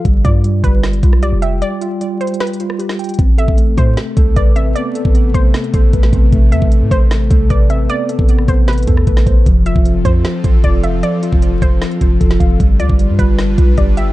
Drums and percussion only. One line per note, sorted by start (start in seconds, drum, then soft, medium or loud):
0.05 kick loud
0.05 closed hi-hat medium
0.25 kick loud
0.25 closed hi-hat medium
0.44 closed hi-hat medium
0.64 kick loud
0.64 closed hi-hat medium
0.83 snare loud
0.83 closed hi-hat medium
0.93 closed hi-hat medium
1.03 kick loud
1.03 closed hi-hat medium
1.13 cross-stick medium
1.23 closed hi-hat medium
1.42 closed hi-hat medium
1.62 closed hi-hat medium
1.81 closed hi-hat medium
2.01 closed hi-hat medium
2.21 closed hi-hat soft
2.27 closed hi-hat medium
2.34 closed hi-hat medium
2.40 snare loud
2.40 closed hi-hat medium
2.47 closed hi-hat medium
2.53 closed hi-hat medium
2.60 closed hi-hat medium
2.70 cross-stick medium
2.79 closed hi-hat medium
2.89 snare loud
2.99 closed hi-hat medium
2.99 open hi-hat medium
3.04 closed hi-hat medium
3.09 closed hi-hat medium
3.14 closed hi-hat medium
3.19 kick loud
3.19 closed hi-hat medium
3.38 closed hi-hat medium
3.48 kick loud
3.58 closed hi-hat medium
3.78 kick loud
3.78 closed hi-hat medium
3.97 snare loud
3.97 closed hi-hat medium
4.17 kick loud
4.17 closed hi-hat medium
4.36 kick loud
4.36 closed hi-hat medium
4.56 closed hi-hat medium
4.76 closed hi-hat medium
4.95 closed hi-hat medium
5.05 kick loud
5.15 closed hi-hat medium
5.34 kick loud
5.34 closed hi-hat medium
5.54 snare loud
5.54 closed hi-hat medium
5.64 closed hi-hat soft
5.74 kick loud
5.74 closed hi-hat medium
5.93 kick loud
5.93 closed hi-hat medium
6.03 snare loud
6.13 kick loud
6.13 closed hi-hat medium
6.32 kick loud
6.32 closed hi-hat medium
6.52 closed hi-hat medium
6.62 kick loud
6.72 closed hi-hat medium
6.91 kick loud
6.91 closed hi-hat medium
7.11 snare loud
7.11 closed hi-hat medium
7.31 kick loud
7.31 closed hi-hat medium
7.50 kick loud
7.50 closed hi-hat medium
7.70 closed hi-hat medium
7.89 closed hi-hat medium
8.09 closed hi-hat medium
8.19 kick loud
8.29 closed hi-hat medium
8.38 cross-stick medium
8.48 kick loud
8.48 closed hi-hat medium
8.68 snare loud
8.68 closed hi-hat soft
8.73 closed hi-hat soft
8.78 closed hi-hat medium
8.83 closed hi-hat medium
8.87 kick loud
8.87 closed hi-hat medium
8.97 cross-stick medium
9.07 kick loud
9.07 closed hi-hat medium
9.17 snare loud
9.27 kick loud
9.27 closed hi-hat medium
9.46 kick loud
9.46 closed hi-hat medium
9.66 closed hi-hat medium
9.76 kick loud
9.85 closed hi-hat medium
10.05 kick loud
10.05 closed hi-hat medium
10.25 snare loud
10.25 closed hi-hat medium
10.44 kick loud
10.44 closed hi-hat medium
10.64 kick loud
10.64 closed hi-hat medium
10.84 closed hi-hat medium
11.03 closed hi-hat medium
11.23 closed hi-hat medium
11.32 kick loud
11.42 closed hi-hat medium
11.62 kick loud
11.62 closed hi-hat medium
11.82 snare loud
11.82 closed hi-hat medium
11.91 closed hi-hat soft
12.01 kick loud
12.01 closed hi-hat medium
12.21 kick loud
12.21 closed hi-hat medium
12.31 snare loud
12.40 kick loud
12.40 closed hi-hat medium
12.60 kick loud
12.60 closed hi-hat medium
12.80 closed hi-hat medium
12.89 kick loud
12.99 closed hi-hat medium
13.19 kick loud
13.19 closed hi-hat medium
13.38 snare loud
13.38 closed hi-hat medium
13.58 kick loud
13.58 closed hi-hat medium
13.78 kick medium
13.78 closed hi-hat medium
13.97 closed hi-hat medium